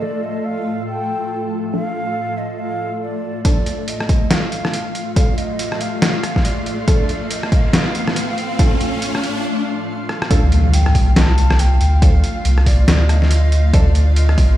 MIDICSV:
0, 0, Header, 1, 8, 480
1, 0, Start_track
1, 0, Tempo, 428571
1, 24, Time_signature, 4, 2, 24, 8
1, 16322, End_track
2, 0, Start_track
2, 0, Title_t, "Ney"
2, 0, Program_c, 0, 77
2, 23, Note_on_c, 0, 74, 96
2, 266, Note_on_c, 0, 75, 93
2, 282, Note_off_c, 0, 74, 0
2, 505, Note_on_c, 0, 77, 105
2, 522, Note_off_c, 0, 75, 0
2, 978, Note_off_c, 0, 77, 0
2, 984, Note_on_c, 0, 79, 105
2, 1608, Note_off_c, 0, 79, 0
2, 1943, Note_on_c, 0, 77, 110
2, 2664, Note_on_c, 0, 75, 94
2, 2681, Note_off_c, 0, 77, 0
2, 2903, Note_on_c, 0, 77, 102
2, 2920, Note_off_c, 0, 75, 0
2, 3378, Note_off_c, 0, 77, 0
2, 3385, Note_on_c, 0, 74, 94
2, 3831, Note_off_c, 0, 74, 0
2, 3866, Note_on_c, 0, 74, 103
2, 4346, Note_on_c, 0, 75, 103
2, 4363, Note_off_c, 0, 74, 0
2, 4824, Note_on_c, 0, 77, 109
2, 4841, Note_off_c, 0, 75, 0
2, 5777, Note_off_c, 0, 77, 0
2, 5783, Note_on_c, 0, 77, 111
2, 6023, Note_on_c, 0, 75, 101
2, 6040, Note_off_c, 0, 77, 0
2, 6505, Note_on_c, 0, 77, 111
2, 6522, Note_off_c, 0, 75, 0
2, 7222, Note_on_c, 0, 74, 96
2, 7238, Note_off_c, 0, 77, 0
2, 7695, Note_off_c, 0, 74, 0
2, 7702, Note_on_c, 0, 74, 103
2, 8149, Note_off_c, 0, 74, 0
2, 8183, Note_on_c, 0, 75, 99
2, 8664, Note_on_c, 0, 77, 104
2, 8681, Note_off_c, 0, 75, 0
2, 10584, Note_off_c, 0, 77, 0
2, 11546, Note_on_c, 0, 77, 111
2, 12025, Note_on_c, 0, 79, 113
2, 12042, Note_off_c, 0, 77, 0
2, 12501, Note_off_c, 0, 79, 0
2, 12507, Note_on_c, 0, 81, 114
2, 12987, Note_on_c, 0, 79, 109
2, 13004, Note_off_c, 0, 81, 0
2, 13467, Note_on_c, 0, 77, 114
2, 13483, Note_off_c, 0, 79, 0
2, 14185, Note_on_c, 0, 74, 102
2, 14202, Note_off_c, 0, 77, 0
2, 14665, Note_on_c, 0, 75, 109
2, 14682, Note_off_c, 0, 74, 0
2, 15386, Note_on_c, 0, 74, 108
2, 15403, Note_off_c, 0, 75, 0
2, 15858, Note_off_c, 0, 74, 0
2, 15865, Note_on_c, 0, 75, 105
2, 16322, Note_off_c, 0, 75, 0
2, 16322, End_track
3, 0, Start_track
3, 0, Title_t, "Ambient pad"
3, 0, Program_c, 1, 92
3, 0, Note_on_c, 1, 57, 79
3, 0, Note_on_c, 1, 65, 74
3, 0, Note_on_c, 1, 69, 90
3, 3816, Note_off_c, 1, 65, 0
3, 3817, Note_off_c, 1, 57, 0
3, 3846, Note_off_c, 1, 69, 0
3, 3864, Note_on_c, 1, 57, 83
3, 3864, Note_on_c, 1, 65, 76
3, 3864, Note_on_c, 1, 77, 89
3, 11499, Note_off_c, 1, 57, 0
3, 11499, Note_off_c, 1, 65, 0
3, 11499, Note_off_c, 1, 77, 0
3, 11543, Note_on_c, 1, 57, 84
3, 11544, Note_on_c, 1, 65, 79
3, 11545, Note_on_c, 1, 77, 94
3, 16322, Note_off_c, 1, 57, 0
3, 16322, Note_off_c, 1, 65, 0
3, 16322, Note_off_c, 1, 77, 0
3, 16322, End_track
4, 0, Start_track
4, 0, Title_t, "Synth stab"
4, 0, Program_c, 2, 62
4, 24, Note_on_c, 2, 53, 85
4, 24, Note_on_c, 2, 62, 77
4, 24, Note_on_c, 2, 69, 91
4, 172, Note_off_c, 2, 53, 0
4, 172, Note_off_c, 2, 62, 0
4, 172, Note_off_c, 2, 69, 0
4, 1942, Note_on_c, 2, 62, 68
4, 1943, Note_on_c, 2, 53, 76
4, 1943, Note_on_c, 2, 69, 84
4, 2037, Note_off_c, 2, 62, 0
4, 2037, Note_off_c, 2, 69, 0
4, 2038, Note_off_c, 2, 53, 0
4, 3865, Note_on_c, 2, 53, 88
4, 3865, Note_on_c, 2, 62, 77
4, 3866, Note_on_c, 2, 69, 94
4, 4012, Note_off_c, 2, 53, 0
4, 4013, Note_off_c, 2, 62, 0
4, 4013, Note_off_c, 2, 69, 0
4, 5785, Note_on_c, 2, 53, 78
4, 5785, Note_on_c, 2, 62, 69
4, 5785, Note_on_c, 2, 69, 85
4, 5879, Note_off_c, 2, 53, 0
4, 5879, Note_off_c, 2, 62, 0
4, 5879, Note_off_c, 2, 69, 0
4, 7704, Note_on_c, 2, 53, 87
4, 7704, Note_on_c, 2, 69, 96
4, 7705, Note_on_c, 2, 62, 78
4, 7852, Note_off_c, 2, 53, 0
4, 7852, Note_off_c, 2, 62, 0
4, 7852, Note_off_c, 2, 69, 0
4, 9625, Note_on_c, 2, 53, 76
4, 9625, Note_on_c, 2, 62, 71
4, 9625, Note_on_c, 2, 69, 88
4, 9719, Note_off_c, 2, 53, 0
4, 9719, Note_off_c, 2, 62, 0
4, 9719, Note_off_c, 2, 69, 0
4, 11544, Note_on_c, 2, 53, 90
4, 11544, Note_on_c, 2, 62, 84
4, 11544, Note_on_c, 2, 69, 98
4, 11692, Note_off_c, 2, 53, 0
4, 11692, Note_off_c, 2, 62, 0
4, 11692, Note_off_c, 2, 69, 0
4, 13465, Note_on_c, 2, 62, 73
4, 13465, Note_on_c, 2, 69, 86
4, 13466, Note_on_c, 2, 53, 80
4, 13559, Note_off_c, 2, 53, 0
4, 13559, Note_off_c, 2, 62, 0
4, 13559, Note_off_c, 2, 69, 0
4, 15385, Note_on_c, 2, 53, 88
4, 15385, Note_on_c, 2, 62, 82
4, 15385, Note_on_c, 2, 69, 101
4, 15532, Note_off_c, 2, 53, 0
4, 15533, Note_off_c, 2, 62, 0
4, 15533, Note_off_c, 2, 69, 0
4, 16322, End_track
5, 0, Start_track
5, 0, Title_t, "Sub bass"
5, 0, Program_c, 3, 38
5, 11542, Note_on_c, 3, 38, 99
5, 12247, Note_off_c, 3, 38, 0
5, 12263, Note_on_c, 3, 36, 99
5, 13207, Note_off_c, 3, 36, 0
5, 13223, Note_on_c, 3, 38, 96
5, 13688, Note_off_c, 3, 38, 0
5, 13942, Note_on_c, 3, 36, 99
5, 14407, Note_off_c, 3, 36, 0
5, 14421, Note_on_c, 3, 38, 96
5, 15366, Note_off_c, 3, 38, 0
5, 15383, Note_on_c, 3, 38, 98
5, 16087, Note_off_c, 3, 38, 0
5, 16102, Note_on_c, 3, 36, 102
5, 16322, Note_off_c, 3, 36, 0
5, 16322, End_track
6, 0, Start_track
6, 0, Title_t, "Impact"
6, 0, Program_c, 4, 103
6, 11542, Note_on_c, 4, 60, 78
6, 13463, Note_off_c, 4, 60, 0
6, 16322, End_track
7, 0, Start_track
7, 0, Title_t, "Riser"
7, 0, Program_c, 5, 103
7, 3862, Note_on_c, 5, 60, 78
7, 10582, Note_off_c, 5, 60, 0
7, 16322, End_track
8, 0, Start_track
8, 0, Title_t, "Drums"
8, 3863, Note_on_c, 9, 36, 109
8, 3863, Note_on_c, 9, 42, 75
8, 3975, Note_off_c, 9, 36, 0
8, 3975, Note_off_c, 9, 42, 0
8, 4103, Note_on_c, 9, 42, 52
8, 4215, Note_off_c, 9, 42, 0
8, 4343, Note_on_c, 9, 42, 80
8, 4455, Note_off_c, 9, 42, 0
8, 4485, Note_on_c, 9, 37, 59
8, 4582, Note_on_c, 9, 42, 53
8, 4583, Note_on_c, 9, 36, 98
8, 4597, Note_off_c, 9, 37, 0
8, 4694, Note_off_c, 9, 42, 0
8, 4695, Note_off_c, 9, 36, 0
8, 4822, Note_on_c, 9, 38, 117
8, 4822, Note_on_c, 9, 42, 79
8, 4934, Note_off_c, 9, 38, 0
8, 4934, Note_off_c, 9, 42, 0
8, 5063, Note_on_c, 9, 42, 51
8, 5175, Note_off_c, 9, 42, 0
8, 5205, Note_on_c, 9, 37, 74
8, 5205, Note_on_c, 9, 38, 34
8, 5303, Note_on_c, 9, 42, 84
8, 5317, Note_off_c, 9, 37, 0
8, 5317, Note_off_c, 9, 38, 0
8, 5415, Note_off_c, 9, 42, 0
8, 5544, Note_on_c, 9, 42, 54
8, 5656, Note_off_c, 9, 42, 0
8, 5783, Note_on_c, 9, 36, 117
8, 5784, Note_on_c, 9, 42, 80
8, 5895, Note_off_c, 9, 36, 0
8, 5896, Note_off_c, 9, 42, 0
8, 6023, Note_on_c, 9, 42, 53
8, 6135, Note_off_c, 9, 42, 0
8, 6263, Note_on_c, 9, 42, 81
8, 6375, Note_off_c, 9, 42, 0
8, 6406, Note_on_c, 9, 37, 56
8, 6503, Note_on_c, 9, 42, 54
8, 6518, Note_off_c, 9, 37, 0
8, 6615, Note_off_c, 9, 42, 0
8, 6743, Note_on_c, 9, 38, 117
8, 6743, Note_on_c, 9, 42, 81
8, 6855, Note_off_c, 9, 38, 0
8, 6855, Note_off_c, 9, 42, 0
8, 6983, Note_on_c, 9, 37, 58
8, 6983, Note_on_c, 9, 42, 56
8, 7095, Note_off_c, 9, 37, 0
8, 7095, Note_off_c, 9, 42, 0
8, 7124, Note_on_c, 9, 36, 63
8, 7124, Note_on_c, 9, 38, 37
8, 7222, Note_on_c, 9, 42, 85
8, 7236, Note_off_c, 9, 36, 0
8, 7236, Note_off_c, 9, 38, 0
8, 7334, Note_off_c, 9, 42, 0
8, 7462, Note_on_c, 9, 42, 55
8, 7574, Note_off_c, 9, 42, 0
8, 7702, Note_on_c, 9, 36, 123
8, 7702, Note_on_c, 9, 42, 77
8, 7814, Note_off_c, 9, 36, 0
8, 7814, Note_off_c, 9, 42, 0
8, 7942, Note_on_c, 9, 42, 52
8, 8054, Note_off_c, 9, 42, 0
8, 8182, Note_on_c, 9, 42, 82
8, 8294, Note_off_c, 9, 42, 0
8, 8325, Note_on_c, 9, 37, 59
8, 8422, Note_on_c, 9, 42, 52
8, 8423, Note_on_c, 9, 36, 104
8, 8437, Note_off_c, 9, 37, 0
8, 8534, Note_off_c, 9, 42, 0
8, 8535, Note_off_c, 9, 36, 0
8, 8662, Note_on_c, 9, 38, 127
8, 8662, Note_on_c, 9, 42, 82
8, 8774, Note_off_c, 9, 38, 0
8, 8774, Note_off_c, 9, 42, 0
8, 8903, Note_on_c, 9, 42, 53
8, 9015, Note_off_c, 9, 42, 0
8, 9044, Note_on_c, 9, 37, 71
8, 9044, Note_on_c, 9, 38, 36
8, 9142, Note_on_c, 9, 42, 84
8, 9156, Note_off_c, 9, 37, 0
8, 9156, Note_off_c, 9, 38, 0
8, 9254, Note_off_c, 9, 42, 0
8, 9383, Note_on_c, 9, 42, 54
8, 9495, Note_off_c, 9, 42, 0
8, 9622, Note_on_c, 9, 42, 76
8, 9623, Note_on_c, 9, 36, 122
8, 9734, Note_off_c, 9, 42, 0
8, 9735, Note_off_c, 9, 36, 0
8, 9862, Note_on_c, 9, 42, 51
8, 9974, Note_off_c, 9, 42, 0
8, 10103, Note_on_c, 9, 42, 82
8, 10215, Note_off_c, 9, 42, 0
8, 10246, Note_on_c, 9, 37, 59
8, 10343, Note_on_c, 9, 42, 51
8, 10358, Note_off_c, 9, 37, 0
8, 10455, Note_off_c, 9, 42, 0
8, 11304, Note_on_c, 9, 37, 63
8, 11416, Note_off_c, 9, 37, 0
8, 11446, Note_on_c, 9, 37, 76
8, 11543, Note_on_c, 9, 36, 118
8, 11543, Note_on_c, 9, 42, 82
8, 11558, Note_off_c, 9, 37, 0
8, 11655, Note_off_c, 9, 36, 0
8, 11655, Note_off_c, 9, 42, 0
8, 11783, Note_on_c, 9, 42, 54
8, 11895, Note_off_c, 9, 42, 0
8, 12023, Note_on_c, 9, 42, 84
8, 12135, Note_off_c, 9, 42, 0
8, 12166, Note_on_c, 9, 37, 62
8, 12263, Note_on_c, 9, 36, 62
8, 12263, Note_on_c, 9, 46, 94
8, 12278, Note_off_c, 9, 37, 0
8, 12375, Note_off_c, 9, 36, 0
8, 12375, Note_off_c, 9, 46, 0
8, 12503, Note_on_c, 9, 38, 122
8, 12503, Note_on_c, 9, 42, 84
8, 12615, Note_off_c, 9, 38, 0
8, 12615, Note_off_c, 9, 42, 0
8, 12743, Note_on_c, 9, 42, 56
8, 12855, Note_off_c, 9, 42, 0
8, 12885, Note_on_c, 9, 37, 76
8, 12885, Note_on_c, 9, 38, 36
8, 12983, Note_on_c, 9, 42, 86
8, 12997, Note_off_c, 9, 37, 0
8, 12997, Note_off_c, 9, 38, 0
8, 13095, Note_off_c, 9, 42, 0
8, 13224, Note_on_c, 9, 42, 57
8, 13336, Note_off_c, 9, 42, 0
8, 13463, Note_on_c, 9, 36, 122
8, 13464, Note_on_c, 9, 42, 85
8, 13575, Note_off_c, 9, 36, 0
8, 13576, Note_off_c, 9, 42, 0
8, 13705, Note_on_c, 9, 42, 53
8, 13817, Note_off_c, 9, 42, 0
8, 13944, Note_on_c, 9, 42, 82
8, 14056, Note_off_c, 9, 42, 0
8, 14085, Note_on_c, 9, 37, 60
8, 14183, Note_on_c, 9, 36, 62
8, 14184, Note_on_c, 9, 46, 94
8, 14197, Note_off_c, 9, 37, 0
8, 14295, Note_off_c, 9, 36, 0
8, 14296, Note_off_c, 9, 46, 0
8, 14424, Note_on_c, 9, 38, 127
8, 14424, Note_on_c, 9, 42, 84
8, 14536, Note_off_c, 9, 38, 0
8, 14536, Note_off_c, 9, 42, 0
8, 14664, Note_on_c, 9, 37, 60
8, 14664, Note_on_c, 9, 42, 57
8, 14776, Note_off_c, 9, 37, 0
8, 14776, Note_off_c, 9, 42, 0
8, 14807, Note_on_c, 9, 38, 37
8, 14903, Note_on_c, 9, 42, 87
8, 14919, Note_off_c, 9, 38, 0
8, 15015, Note_off_c, 9, 42, 0
8, 15144, Note_on_c, 9, 42, 56
8, 15256, Note_off_c, 9, 42, 0
8, 15383, Note_on_c, 9, 36, 127
8, 15384, Note_on_c, 9, 42, 79
8, 15495, Note_off_c, 9, 36, 0
8, 15496, Note_off_c, 9, 42, 0
8, 15624, Note_on_c, 9, 42, 53
8, 15736, Note_off_c, 9, 42, 0
8, 15863, Note_on_c, 9, 42, 83
8, 15975, Note_off_c, 9, 42, 0
8, 16006, Note_on_c, 9, 37, 60
8, 16102, Note_on_c, 9, 36, 66
8, 16103, Note_on_c, 9, 46, 90
8, 16118, Note_off_c, 9, 37, 0
8, 16214, Note_off_c, 9, 36, 0
8, 16215, Note_off_c, 9, 46, 0
8, 16322, End_track
0, 0, End_of_file